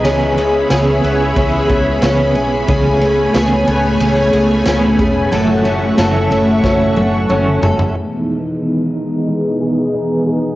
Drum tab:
RD |x-x-x-x-x-x-x-x-|x-x-x-x-x-x-x-x-|x-x-x-x---------|----------------|
TB |----x-------x---|----x-------x---|----x-----------|----------------|
SD |----o-------o---|----o-------o---|----o---o-------|----------------|
T1 |----------------|----------------|----------o-----|----------------|
T2 |----------------|----------------|------------o---|----------------|
FT |----------------|----------------|--------------oo|----------------|
BD |--------o-o-----|o-------------o-|--------o-------|----------------|